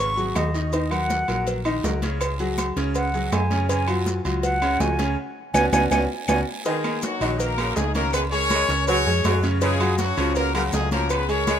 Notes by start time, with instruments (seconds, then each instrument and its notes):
Already playing: fingered electric bass G#1, grand piano C#3 C#4 C#5, flute C#6
0.17 grand piano F#3 F#4 G#4, high conga, maracas
0.35 fingered electric bass D#2, flute D#5, cowbell, high conga, low timbale, low agogo, short guiro, claves, maracas
0.54 grand piano D#3 D#4 D#5, short guiro, maracas
0.72 grand piano D#3 D#4 D#5, cowbell, high conga, low agogo, long guiro, maracas
0.90 grand piano F#3 F#4 A#4, flute F#5, high conga, low agogo, claves, maracas
1.10 cowbell, high conga, low timbale, short guiro, maracas
1.28 fingered electric bass A#1, grand piano F#3 F#4 A#4, high conga, low agogo, short guiro, maracas
1.47 cowbell, high conga, low agogo, long guiro, maracas
1.65 grand piano D#3 D#4 D#5, high conga, low agogo, claves, maracas
1.83 fingered electric bass C#2, grand piano F#3 F#4 A#4, cowbell, high conga, low timbale, short guiro, maracas
2.02 grand piano C#3 C#4 C#5, cowbell, high conga, low agogo, short guiro, maracas
2.21 cowbell, high conga, low agogo, long guiro, claves, maracas
2.39 grand piano F#3 F#4 G#4, high conga, low agogo, maracas
2.58 cowbell, high conga, low timbale, low agogo, short guiro, claves, maracas
2.76 fingered electric bass C#2, grand piano C#3 C#4 C#5, cowbell, short guiro, maracas
2.95 flute F#5, cowbell, high conga, low agogo, long guiro, maracas
3.14 grand piano F#3 F#4 G#4, high conga, maracas
3.32 fingered electric bass F#2, flute G#5, cowbell, high conga, low timbale, low agogo, short guiro, claves, maracas
3.50 grand piano C#3 C#4 C#5, high conga, short guiro, maracas
3.69 grand piano C#3 C#4 C#5, flute G#5, cowbell, high conga, low agogo, long guiro, maracas
3.88 grand piano F#3 F4 F#4, high conga, low agogo, claves, maracas
4.06 cowbell, high conga, low timbale, short guiro, maracas
4.25 fingered electric bass C#2, grand piano F#3 F4 F#4, high conga, low agogo, short guiro, maracas
4.43 flute F#5, cowbell, high conga, low agogo, long guiro, maracas
4.62 grand piano C#3 C#4 C#5, high conga, low agogo, claves, maracas
4.80 fingered electric bass C#2, grand piano F3 F4 F#4, flute G#5, cowbell, high conga, low timbale, short guiro, maracas
4.99 grand piano C#3 C#4 C#5, cowbell, high conga, low agogo, short guiro, maracas
5.54 fingered electric bass C#2, grand piano B3 C#4 F#4, flute G#5, cowbell, high conga, high timbale, long guiro, claves, maracas
5.72 fingered electric bass C#2, grand piano B3 C#4 F#4, flute G#5, cowbell, high conga, high timbale, long guiro, claves, maracas
5.90 fingered electric bass C#2, grand piano B3 C#4 F#4, flute G#5, cowbell, high conga, high timbale, long guiro, claves, maracas
6.28 fingered electric bass C#2, grand piano B3 C#4 F#4, flute G#5, cowbell, high conga, high timbale, long guiro, claves, maracas
6.65 grand piano D#3 D#4 D#5, saxophone section D#3, horn section G#3 D#4 G#4, cowbell, high conga, low agogo, maracas
6.84 grand piano A#3 A#4 A#5, high conga, low agogo, claves, maracas
7.02 horn section F#3 D#4 F#4, cowbell, high conga, low timbale, short guiro, maracas
7.21 fingered electric bass A#1, grand piano D#3 D#4 D#5, saxophone section F#3, high conga, low agogo, short guiro, maracas
7.39 horn section A#3 F#4 A#4, cowbell, high conga, low agogo, long guiro, maracas
7.57 saxophone section C#3, grand piano A#3 A#4 A#5, high conga, low agogo, claves, maracas
7.76 fingered electric bass C#2, horn section G#3 D#4 G#4, cowbell, high conga, low timbale, short guiro, maracas
7.95 saxophone section D#3, horn section A#3 F#4 A#4, grand piano C#4 C#5 C#6, cowbell, high conga, low agogo, short guiro, maracas
8.13 horn section B3 G#4 B4, cowbell, high conga, low agogo, long guiro, claves, maracas
8.32 grand piano G#3 G#4 G#5, horn section C#4 A#4 C#5, high conga, low agogo, maracas
8.50 saxophone section G#3, cowbell, high conga, low timbale, low agogo, short guiro, claves, maracas
8.69 fingered electric bass C#2, grand piano C#4 C#5 C#6, cowbell, short guiro, maracas
8.87 saxophone section F#3, horn section C#4 G#4 C#5, cowbell, high conga, low agogo, long guiro, maracas
9.06 fingered electric bass F2, grand piano G#3 G#4 G#5, high conga, maracas
9.24 fingered electric bass F#2, saxophone section F#3, cowbell, high conga, low timbale, low agogo, short guiro, claves, maracas
9.43 grand piano C#3 C#4 C#5, high conga, short guiro, maracas
9.61 grand piano C#3 C#4 C#5, saxophone section C#3, horn section G#3 F4 G#4, cowbell, high conga, low agogo, long guiro, maracas
9.80 grand piano F#3 F#4 F#5, high conga, low agogo, claves, maracas
9.98 horn section F#3 C#4 F#4, cowbell, high conga, low timbale, short guiro, maracas
10.17 fingered electric bass C#2, grand piano C#3 C#4 C#5, saxophone section F3, high conga, low agogo, short guiro, maracas
10.35 horn section A#3 F#4 A#4, cowbell, high conga, low agogo, long guiro, maracas
10.54 saxophone section C#3, grand piano F#3 F#4 F#5, horn section A#3 F#4 A#4, high conga, low agogo, claves, maracas
10.72 fingered electric bass C#2, horn section G#3 F4 G#4, cowbell, high conga, low timbale, short guiro, maracas
10.91 saxophone section F3, horn section A#3 F#4 A#4, grand piano C#4 C#5 C#6, cowbell, high conga, low agogo, short guiro, maracas
11.10 horn section B3 G#4 B4, cowbell, high conga, low agogo, long guiro, claves, maracas
11.29 grand piano G#3 G#4 G#5, horn section C#4 A#4 C#5, high conga, low agogo, maracas
11.47 saxophone section G#3, cowbell, high conga, low timbale, low agogo, short guiro, claves, maracas